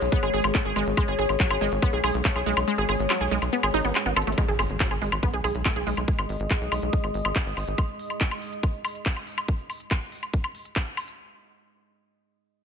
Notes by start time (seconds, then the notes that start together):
Already playing: G#3 G#4 C#5 D#6
0.02 B1, closed hi-hat
0.12 B3, kick, closed hi-hat
0.23 G#1 G#4, closed hi-hat, high woodblock
0.33 G#1 G#4, open hi-hat
0.44 G#1, closed hi-hat, high woodblock
0.55 A3, kick, clap, closed hi-hat
0.65 G#1 G#4, closed hi-hat
0.76 G#1 G#3, open hi-hat, high woodblock
0.87 G#1, closed hi-hat
0.97 G#3, kick, closed hi-hat, high woodblock
1.08 G#1 G#4, closed hi-hat
1.19 G#1 G#4, open hi-hat
1.29 G#1, closed hi-hat, high woodblock
1.40 F#3, kick, clap, closed hi-hat
1.51 G#1 G#4, closed hi-hat, high woodblock
1.61 G#1 G#3, open hi-hat
1.72 G#1, closed hi-hat
1.82 B3, kick, closed hi-hat, high woodblock
1.93 B1 G#4, closed hi-hat
2.04 B1 G#4, open hi-hat, high woodblock
2.14 B1, closed hi-hat
2.25 A3, kick, clap, closed hi-hat
2.36 B1 G#4, closed hi-hat, high woodblock
2.46 B1 G#3, open hi-hat
2.57 B1, closed hi-hat, high woodblock
2.68 G#3, closed hi-hat
2.78 G#1 G#4, closed hi-hat
2.89 G#1 G#4, open hi-hat, high woodblock
2.99 G#1, closed hi-hat
3.10 F#3, clap, closed hi-hat, high woodblock
3.21 B1 G#4, closed hi-hat
3.31 B1 G#3, open hi-hat
3.42 B1, closed hi-hat, high woodblock
3.53 B3, closed hi-hat
3.63 G#1 G#4, closed hi-hat, high woodblock
3.74 G#1 D#4, open hi-hat
3.85 G#1 B3, closed hi-hat
3.95 clap, closed hi-hat, high woodblock
4.06 G#1 B3, closed hi-hat
4.16 G#1 A4, closed hi-hat, high woodblock
4.22 closed hi-hat
4.27 G#1 A3, closed hi-hat
4.32 closed hi-hat
4.38 G#3, kick, closed hi-hat, impact, high woodblock
4.48 G#1 G#4, closed hi-hat
4.59 G#1 G#4, open hi-hat, high woodblock
4.65 G#4
4.70 G#1, closed hi-hat
4.80 F#3, kick, clap, closed hi-hat
4.91 G#1 G#4, closed hi-hat, high woodblock
5.02 G#1 G#3, open hi-hat
5.08 D#5
5.12 G#1, closed hi-hat, high woodblock
5.23 B3, kick, closed hi-hat
5.33 B1 G#4, closed hi-hat
5.44 B1 G#4, open hi-hat, high woodblock
5.51 B1 D#6, closed hi-hat
5.65 A3, kick, clap, closed hi-hat, high woodblock
5.76 B1 G#4, closed hi-hat
5.87 B1 G#3, open hi-hat
5.97 B1, closed hi-hat, high woodblock
6.08 kick, closed hi-hat
6.19 G#1, closed hi-hat, high woodblock
6.29 G#1, open hi-hat
6.40 G#1, closed hi-hat
6.51 kick, clap, closed hi-hat, high woodblock
6.61 B1, closed hi-hat
6.72 B1, open hi-hat, high woodblock
6.82 B1, closed hi-hat
6.93 kick, closed hi-hat
7.04 G#1, closed hi-hat, high woodblock
7.14 G#1, open hi-hat
7.25 G#1, closed hi-hat, high woodblock
7.36 kick, clap, closed hi-hat
7.46 G#1, closed hi-hat
7.57 G#1, open hi-hat, high woodblock
7.68 G#1, closed hi-hat
7.78 kick, closed hi-hat, high woodblock
7.89 closed hi-hat
7.99 open hi-hat
8.10 closed hi-hat, high woodblock
8.21 kick, clap, closed hi-hat
8.31 closed hi-hat, high woodblock
8.42 open hi-hat
8.53 closed hi-hat
8.63 kick, closed hi-hat, high woodblock
8.74 closed hi-hat
8.85 open hi-hat, high woodblock
8.95 closed hi-hat
9.06 kick, clap, closed hi-hat
9.16 closed hi-hat, high woodblock
9.27 open hi-hat
9.38 closed hi-hat, high woodblock
9.48 kick, closed hi-hat
9.59 closed hi-hat
9.70 open hi-hat, high woodblock
9.80 closed hi-hat
9.91 kick, clap, closed hi-hat, high woodblock
10.02 closed hi-hat
10.12 open hi-hat
10.23 closed hi-hat, high woodblock
10.33 kick, closed hi-hat
10.44 closed hi-hat, high woodblock
10.55 open hi-hat
10.65 closed hi-hat
10.76 kick, clap, closed hi-hat, high woodblock
10.87 closed hi-hat
10.97 open hi-hat, high woodblock
11.08 closed hi-hat